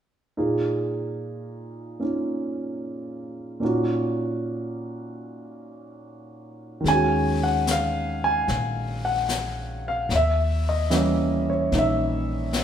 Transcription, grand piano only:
0, 0, Header, 1, 2, 480
1, 0, Start_track
1, 0, Key_signature, -6, "minor"
1, 0, Tempo, 810811
1, 215, Time_signature, 4, 2, 24, 8
1, 7482, End_track
2, 0, Start_track
2, 0, Title_t, "Grand piano"
2, 0, Program_c, 0, 0
2, 220, Note_on_c, 0, 63, 37
2, 222, Note_on_c, 0, 46, 38
2, 222, Note_on_c, 0, 58, 36
2, 225, Note_on_c, 0, 65, 39
2, 228, Note_on_c, 0, 68, 44
2, 330, Control_c, 0, 64, 127
2, 1172, Note_off_c, 0, 58, 0
2, 1181, Note_on_c, 0, 58, 32
2, 1186, Note_off_c, 0, 63, 0
2, 1186, Note_on_c, 0, 61, 33
2, 1190, Note_off_c, 0, 65, 0
2, 1195, Note_on_c, 0, 63, 29
2, 1199, Note_on_c, 0, 65, 38
2, 2121, Note_off_c, 0, 46, 0
2, 2123, Note_off_c, 0, 58, 0
2, 2130, Note_off_c, 0, 61, 0
2, 2130, Note_on_c, 0, 46, 40
2, 2132, Note_on_c, 0, 58, 39
2, 2137, Note_off_c, 0, 63, 0
2, 2138, Note_on_c, 0, 61, 36
2, 2145, Note_off_c, 0, 68, 0
2, 2145, Note_on_c, 0, 63, 36
2, 2146, Note_off_c, 0, 65, 0
2, 2147, Control_c, 0, 64, 0
2, 2155, Note_on_c, 0, 65, 34
2, 2157, Note_on_c, 0, 66, 45
2, 2260, Control_c, 0, 64, 127
2, 4029, Note_on_c, 0, 51, 44
2, 4048, Note_on_c, 0, 56, 39
2, 4055, Note_off_c, 0, 46, 0
2, 4056, Note_off_c, 0, 58, 0
2, 4059, Note_off_c, 0, 61, 0
2, 4063, Note_off_c, 0, 63, 0
2, 4066, Control_c, 0, 64, 0
2, 4067, Note_off_c, 0, 65, 0
2, 4069, Note_off_c, 0, 66, 0
2, 4073, Note_on_c, 0, 61, 45
2, 4075, Note_on_c, 0, 80, 80
2, 4094, Note_on_c, 0, 66, 47
2, 4158, Control_c, 0, 64, 127
2, 4397, Note_off_c, 0, 80, 0
2, 4401, Note_on_c, 0, 78, 69
2, 4557, Note_off_c, 0, 78, 0
2, 4566, Note_on_c, 0, 77, 79
2, 4879, Note_on_c, 0, 80, 78
2, 4882, Note_off_c, 0, 77, 0
2, 5357, Note_on_c, 0, 78, 68
2, 5364, Note_off_c, 0, 80, 0
2, 5841, Note_off_c, 0, 78, 0
2, 5849, Note_on_c, 0, 77, 68
2, 5965, Note_off_c, 0, 51, 0
2, 5974, Note_off_c, 0, 56, 0
2, 5987, Note_off_c, 0, 61, 0
2, 5988, Control_c, 0, 64, 0
2, 5997, Note_off_c, 0, 66, 0
2, 5999, Note_off_c, 0, 77, 0
2, 6013, Note_on_c, 0, 76, 71
2, 6082, Control_c, 0, 64, 127
2, 6323, Note_off_c, 0, 76, 0
2, 6328, Note_on_c, 0, 75, 68
2, 6454, Note_on_c, 0, 52, 49
2, 6458, Note_on_c, 0, 55, 43
2, 6459, Note_on_c, 0, 58, 46
2, 6463, Note_on_c, 0, 61, 49
2, 6805, Note_off_c, 0, 75, 0
2, 6806, Note_on_c, 0, 73, 59
2, 6925, Note_off_c, 0, 58, 0
2, 6931, Note_off_c, 0, 61, 0
2, 6934, Note_on_c, 0, 58, 35
2, 6940, Note_on_c, 0, 61, 32
2, 6941, Note_off_c, 0, 73, 0
2, 6950, Note_on_c, 0, 63, 40
2, 6977, Note_on_c, 0, 76, 68
2, 7482, Note_off_c, 0, 52, 0
2, 7482, Note_off_c, 0, 55, 0
2, 7482, Note_off_c, 0, 58, 0
2, 7482, Note_off_c, 0, 61, 0
2, 7482, Note_off_c, 0, 63, 0
2, 7482, Note_off_c, 0, 76, 0
2, 7482, End_track
0, 0, End_of_file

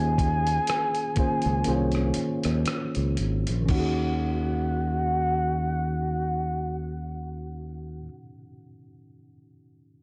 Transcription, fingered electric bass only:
0, 0, Header, 1, 3, 480
1, 0, Start_track
1, 0, Tempo, 980392
1, 1298, Tempo, 1050788
1, 1773, Time_signature, 4, 2, 24, 8
1, 4668, End_track
2, 0, Start_track
2, 0, Title_t, "Fingered electric bass"
2, 0, Program_c, 0, 33
2, 0, Note_on_c, 0, 39, 85
2, 283, Note_off_c, 0, 39, 0
2, 715, Note_on_c, 0, 37, 74
2, 803, Note_off_c, 0, 37, 0
2, 819, Note_on_c, 0, 36, 70
2, 1032, Note_off_c, 0, 36, 0
2, 1201, Note_on_c, 0, 39, 66
2, 1293, Note_off_c, 0, 39, 0
2, 1442, Note_on_c, 0, 37, 67
2, 1529, Note_off_c, 0, 37, 0
2, 1545, Note_on_c, 0, 32, 73
2, 1660, Note_off_c, 0, 32, 0
2, 1682, Note_on_c, 0, 34, 61
2, 1769, Note_off_c, 0, 34, 0
2, 1778, Note_on_c, 0, 39, 72
2, 3776, Note_off_c, 0, 39, 0
2, 4668, End_track
3, 0, Start_track
3, 0, Title_t, "Muted fingered electric bass strokes"
3, 578, Note_on_c, 9, 29, 37
3, 627, Note_off_c, 9, 29, 0
3, 1062, Note_on_c, 9, 29, 40
3, 1111, Note_off_c, 9, 29, 0
3, 4668, End_track
0, 0, End_of_file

